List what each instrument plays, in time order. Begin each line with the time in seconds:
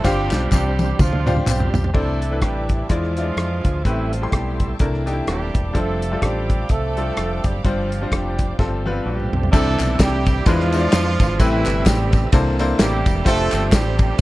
0.04 fingered electric bass G1, grand piano G2 D4 F4 G4 C5 F5, tonewheel organ G3 C4 D4 F4 B4, horn section G3 C4 D4 G4, kick, snare, tambourine
0.11 tonewheel organ C5
0.31 fingered electric bass B1, snare, clap, tambourine
0.52 fingered electric bass C2, horn section G3 C4 D4 G4, kick, clap, high tom, tambourine
0.79 high tom, tambourine
0.99 fingered electric bass D2, horn section F3 C4 D4 F4, kick, mid tom, tambourine
1.13 mid tom
1.26 grand piano D4 F4 G4 C5 F5, mid tom, tambourine
1.37 mid tom
1.47 fingered electric bass B1, horn section G3 C4 D4 F4 G4, clap, mid tom, tambourine
1.60 floor tom
1.74 fingered electric bass B1, floor tom, tambourine
1.84 floor tom
1.93 fingered electric bass C2, grand piano C3 A3 D4 E4 C5, tonewheel organ D3 C4 D4 A4, horn section A3 D4 E4 A4, string section D5 E5 G5 A5, kick, crash
2.00 tonewheel organ E3
2.22 closed hi-hat
2.31 grand piano A3 D4 E4 B4
2.41 fingered electric bass A1, horn section G3 D4 E4 G4, kick, cross-stick, closed hi-hat
2.69 kick, closed hi-hat
2.89 fingered electric bass E2, tonewheel organ E3 D4 F4 G#4, grand piano E3 G#3 E4 F4 D5, horn section F3 G#3 D4 F4, string section F4 G#5 D6, kick, closed hi-hat
3.04 cross-stick
3.17 grand piano F3 F4 D5 E5, closed hi-hat
3.23 grand piano G#3
3.36 fingered electric bass F2, cross-stick, closed hi-hat
3.65 fingered electric bass D2, kick, closed hi-hat
3.84 fingered electric bass A1, grand piano A2 A3 C4 G4 B4, horn section E3 G3 C4 E4, tonewheel organ G3 A3 E4 A4, string section G5 A5 C6, kick, closed hi-hat
4.12 horn section F3 F4, closed hi-hat
4.22 grand piano A3 E4 G4 C6
4.31 fingered electric bass B1, horn section G3 B3 C4 G4, kick, cross-stick, closed hi-hat
4.60 kick, closed hi-hat
4.79 fingered electric bass C2, grand piano C3 A3 D4 E4 A#4, tonewheel organ D3 C4 D4 A4, string section E5 G5 D6, kick, closed hi-hat
4.86 tonewheel organ E3
4.94 cross-stick
5.06 grand piano A3 D4 D#4 G4, closed hi-hat
5.12 grand piano E4
5.27 fingered electric bass D#1, horn section G3 A#3 E4 G4, cross-stick, closed hi-hat
5.55 fingered electric bass E1, kick, closed hi-hat
5.73 fingered electric bass F1, tonewheel organ F3 A3 D4 G4, grand piano G3 D4 F4 A4, horn section A3 C4 D4 A4, string section F5 G5 D6, kick, closed hi-hat
6.02 closed hi-hat
6.12 grand piano G3 D4 F4 A4
6.22 fingered electric bass A1, horn section G3 C4 D4 G4, kick, cross-stick, closed hi-hat
6.50 kick, closed hi-hat
6.69 fingered electric bass C2, horn section A3 C4 D4 A4, kick, closed hi-hat
6.97 grand piano G3 D4 F4 A4, closed hi-hat
7.17 fingered electric bass F1, cross-stick, closed hi-hat
7.44 fingered electric bass F#1, horn section G3 G4, kick, closed hi-hat
7.64 fingered electric bass G1, grand piano G2 G3 D4 F4 C5, horn section F3 C4 D4 F4, tonewheel organ F3 C4 D4 G4, kick, closed hi-hat
7.92 closed hi-hat
8.01 grand piano G3 D4 F4 C5
8.12 fingered electric bass F1, horn section G3 C4 D4 G4, kick, cross-stick, closed hi-hat
8.39 kick, closed hi-hat
8.59 fingered electric bass G1, grand piano G2 G3 C4 F4 A4, tonewheel organ F3 A3 C4 G4, string section F5 A5, kick, snare
8.86 grand piano G3 B3 F4 B4, high tom
8.92 grand piano C4
9.05 fingered electric bass A#1, horn section G3 C4 D4 G4
9.20 mid tom
9.33 fingered electric bass B1, floor tom
9.43 floor tom
9.52 fingered electric bass C2, grand piano C3 G3 C4 D4 E4 A4, tonewheel organ E3 A3 C4 D4 G4, horn section A3 D4 E4 A4, kick, crash, tambourine
9.80 fingered electric bass B1, clap, ride bell, tambourine
9.99 fingered electric bass C2, horn section G3 D4 E4 G4, kick, snare, clap, ride bell, tambourine
10.26 kick, ride bell, tambourine
10.46 fingered electric bass E2, grand piano E3 G#3 D4 E4 F4 B4, tonewheel organ E3 B3 D4 F4 G4, horn section F3 G#3 D4 F4, kick, ride bell, tambourine
10.53 tonewheel organ G#4
10.60 snare
10.72 grand piano G#3 D4 F4 C5 E5, ride bell, tambourine
10.80 grand piano D5
10.92 fingered electric bass F2, snare, clap, ride bell, tambourine
11.20 fingered electric bass G#1, kick, ride bell, tambourine
11.39 fingered electric bass A1, grand piano A2 A3 C4 E4 G4 B4, tonewheel organ C3 G3 E4 A4 B4, horn section E3 G3 C4 E4, kick, ride bell, tambourine
11.66 fingered electric bass G1, clap, ride bell, tambourine
11.86 fingered electric bass A1, horn section G3 B3 C4 G4, kick, snare, clap, ride bell, tambourine
12.13 kick, ride bell, tambourine
12.32 fingered electric bass C2, grand piano C3 A#3 D4 E4 A4 C5, tonewheel organ E3 A#3 C4 D4 A4, kick, ride bell, tambourine
12.59 grand piano A#3 D4 E4 A4 C5, ride bell, tambourine
12.79 fingered electric bass A1, horn section G3 A#3 E4 G4, snare, clap, ride bell, tambourine
13.06 fingered electric bass E1, kick, ride bell, tambourine
13.25 fingered electric bass F1, tonewheel organ F3 A3 C4 D4 G4, grand piano A3 D4 F4 G4 C5, horn section A3 C4 D4 A4, kick, ride bell, tambourine
13.52 fingered electric bass G1, clap, ride bell, tambourine
13.72 fingered electric bass A1, horn section G3 G4, kick, snare, clap, ride bell, tambourine
13.99 horn section G3 G4, kick, ride bell, tambourine